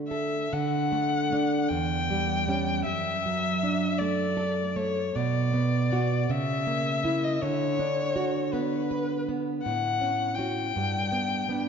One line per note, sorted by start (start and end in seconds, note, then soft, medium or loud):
0.00 0.48 D3 medium
0.00 0.36 A3 soft
0.08 0.52 A4 soft
0.08 0.54 E5 medium
0.53 1.68 D3 medium
0.53 1.70 F#5 medium
0.92 1.31 A3 soft
1.32 1.67 A3 soft
1.32 1.67 D4 soft
1.69 2.83 E2 medium
1.69 2.84 G5 medium
2.10 2.46 G3 soft
2.48 2.83 G3 soft
2.48 2.83 C#4 soft
2.85 5.10 F#2 medium
2.85 3.99 E5 medium
3.26 3.86 F#3 soft
3.63 4.23 D4 soft
3.98 4.61 A3 soft
3.98 4.78 D5 medium
4.37 4.98 A4 soft
4.76 5.14 A3 soft
4.76 5.17 C#5 medium
5.15 6.27 B2 soft
5.15 6.31 D5 medium
5.54 5.91 B3 soft
5.92 6.26 B3 soft
5.92 6.26 F#4 soft
6.30 7.38 C#3 medium
6.30 7.26 E5 medium
6.67 7.03 A#3 soft
7.05 7.38 A#3 soft
7.05 7.38 E4 soft
7.24 7.43 D#5 medium
7.42 9.61 D3 medium
7.42 8.54 C#5 medium
7.79 8.38 D4 soft
8.16 8.75 F#4 soft
8.53 9.12 B3 soft
8.53 9.27 B4 medium
8.91 9.50 B4 soft
9.29 9.65 B3 soft
9.63 10.71 A2 medium
9.63 10.36 F#5 medium
10.01 10.37 C#4 soft
10.35 10.71 C#4 soft
10.35 11.69 G5 medium
10.39 10.71 F#4 soft
10.76 11.69 G2 medium
11.12 11.48 B3 soft
11.49 11.69 B3 soft
11.49 11.69 D4 soft